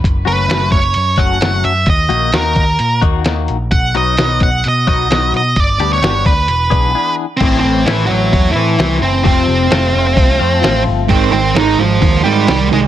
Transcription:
<<
  \new Staff \with { instrumentName = "Lead electric guitar" } { \time 4/4 \key b \mixolydian \tempo 4 = 130 r8 b'4 cis''4 fis''4 e''8 | dis''4 ais'4. r4. | fis''8 dis''4 fis''8 dis''8 dis''4 dis''8 | d''8. cis''8. b'2 r8 |
\key a \major <c' c''>8 <c' c''>8 <e e'>8 <fis fis'>4 <e e'>4 <c' c''>8 | <c' c''>2.~ <c' c''>8 r8 | <bis bis'>8 <bis bis'>8 <dis' dis''>8 <eis eis'>4 <g g'>4 <gis gis'>8 | }
  \new Staff \with { instrumentName = "Clean electric guitar" } { \time 4/4 \key b \mixolydian r8 <fis a cis' fis'>8 <fis a cis' fis'>8 r4 <fis a cis' fis'>8 <fis a cis' fis'>8 r8 | r8 <dis ais dis' fis'>8 <dis ais dis' fis'>8 r4 <dis ais dis' fis'>8 <dis ais dis' fis'>8 r8 | r8 <fis b dis' fis'>8 <fis b dis' fis'>8 r4 <fis b dis' fis'>8 <fis b dis' fis'>8 r8 | r8 <g b d' g'>8 <g b d' g'>8 r4 <e b d' gis'>8 <e b d' gis'>8 r8 |
\key a \major <a, e a c' e'>8 <a c' e'>8 <a, e a c' e'>8 <a c' e'>4 <a c' e'>8 <e a c' e'>4 | <f, c f a c' f'>8 <f a c' f'>8 <f, c f a c' f'>8 <f a c' f'>4 <f a c' f'>8 <f a c' f'>4 | r1 | }
  \new Staff \with { instrumentName = "Distorted electric guitar" } { \clef bass \time 4/4 \key b \mixolydian r1 | r1 | r1 | r1 |
\key a \major r1 | r1 | <gis, dis gis>8 <gis, dis>8 <gis, dis gis>8 <gis, dis>8 <gis, dis>8 <gis, dis gis>8 <gis, dis>8 <gis, dis>8 | }
  \new Staff \with { instrumentName = "Picked electric bass" } { \clef bass \time 4/4 \key b \mixolydian fis,,8 fis,,8 fis,,8 fis,,8 fis,8 fis,,8 fis,,8 fis,8 | dis,8 ais,,8 dis,8 dis,8 ais,8 dis,8 dis,8 ais,,8 | b,,8 b,,8 b,,8 b,,8 b,8 b,,8 b,,8 b,8 | g,,8 d,8 g,,8 d,8 e,,8 b,,8 r4 |
\key a \major a,,8 a,,8 a,,8 a,,8 e,8 a,8 c,8 fis,,8 | f,,8 f,,8 f,,8 f,,8 c,8 f,8 a,,8 g,,8 | gis,,8 gis,,8 gis,,8 gis,,8 dis,8 gis,8 bis,,8 bis,,8 | }
  \new DrumStaff \with { instrumentName = "Drums" } \drummode { \time 4/4 <hh bd>8 hh8 <hh sn>8 <hh bd>8 hh8 <hh bd>8 <hh sn>8 hh8 | <hh bd>8 hh8 <hh sn>8 <hh bd>8 hh8 <hh bd>8 <hh sn>8 hh8 | <hh bd>8 hh8 <hh sn>8 <hh bd>8 hh8 <hh bd>8 <hh sn>8 hh8 | <hh bd>8 hh8 <hh sn>8 <hh bd>8 hh8 <hh bd>8 r4 |
<cymc hho bd>4 <hho sn>4 <hho bd>4 <hho sn>4 | <hho bd>4 <hho sn>4 <hho bd>4 <hho sn>4 | <hho bd>4 <hho sn>4 <hho bd>8 sn8 <hho sn>4 | }
>>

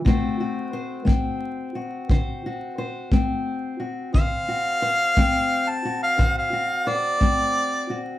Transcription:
<<
  \new Staff \with { instrumentName = "Harmonica" } { \time 12/8 \key d \mixolydian \tempo 4. = 59 r1. | f''2~ f''16 a''8 f''8 f''8. d''2 | }
  \new Staff \with { instrumentName = "Steel-string acoustic guitar" } { \time 12/8 \key d \mixolydian << { <a c' fis' c''>8 fis'8 c''8 c'4 fis'8 c''8 fis'8 c''8 c'4 fis'8 | c''8 fis'8 c''8 c'4 fis'8 c''8 fis'8 c''8 c'4 fis'8 | } \\ { d4 r8 a4 r8 d4 r8 a4 r8 | d4 r8 a4 r8 d4 r8 a4 r8 | } >> }
  \new DrumStaff \with { instrumentName = "Drums" } \drummode { \time 12/8 bd4. bd4. bd4. bd4. | bd4. bd4. bd4. bd4. | }
>>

